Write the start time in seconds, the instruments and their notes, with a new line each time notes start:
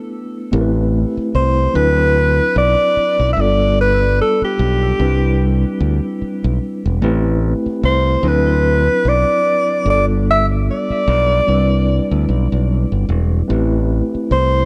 Already playing: tine electric piano A3 B3 D4 E4 B4
0.52 fingered electric bass A1, tine electric piano A3 C4 E4 G4 A#4
0.61 tine electric piano B4
1.17 muted fingered electric bass stroke
1.35 fingered electric bass C2, alto saxophone C5
1.73 fingered electric bass D2, tine electric piano F#3 C4 D4 E4 B4, alto saxophone B4
2.56 fingered electric bass B1, alto saxophone D5
2.97 muted fingered electric bass stroke
3.19 fingered electric bass B1
3.33 fingered electric bass G1, tine electric piano G3, alto saxophone E5
3.37 tine electric piano B3 D4 F4 A4, alto saxophone D5
3.81 alto saxophone B4
4.21 alto saxophone A4
4.42 alto saxophone G4, muted fingered electric bass stroke
4.59 fingered electric bass B1
4.99 fingered electric bass C2, tine electric piano G3 C4 D4 E4 B4
5.80 fingered electric bass D2
6.22 muted fingered electric bass stroke
6.44 fingered electric bass B1
6.86 fingered electric bass E1
7.01 fingered electric bass A1, tine electric piano A3 C4 E4 G4 B4
7.66 muted fingered electric bass stroke
7.83 fingered electric bass C2, alto saxophone C5
8.23 fingered electric bass D2, tine electric piano F#3 C4 D4 E4 B4
8.27 alto saxophone B4
9.05 fingered electric bass B1, alto saxophone D5
9.85 fingered electric bass G1, tine electric piano G3 B3 D4 F4 A4
9.90 alto saxophone D5
10.30 alto saxophone E5
10.71 alto saxophone D5
10.90 muted fingered electric bass stroke
11.08 fingered electric bass B1
11.46 fingered electric bass C2, tine electric piano G3 C4 D4 E4 B4
12.11 fingered electric bass D2
12.29 fingered electric bass B1
12.52 fingered electric bass B1
12.92 fingered electric bass G1
13.09 fingered electric bass E1
13.48 fingered electric bass A1, tine electric piano A3 C4 E4 G4 B4
14.15 muted fingered electric bass stroke
14.31 fingered electric bass C2, alto saxophone C5